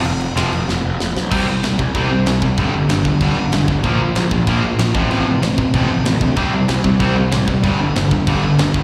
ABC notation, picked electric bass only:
X:1
M:4/4
L:1/8
Q:1/4=190
K:Flyd
V:1 name="Picked electric bass" clef=bass
F,,,2 F,,, F,,, F,,, F,,, F,,, B,,, | C,,2 C,, C,, C,,2 C,,2 | G,,, G,,, G,,,2 G,,, G,,, G,,, G,,, | _B,,,2 B,,, B,,, B,,,2 B,,, A,,, |
A,,, A,,, A,,,2 A,,, A,,, A,,, D,, | C,,2 C,, C,, C,,2 A,,,2 | G,,, G,,, G,,,2 G,,, G,,, G,,, G,,, |]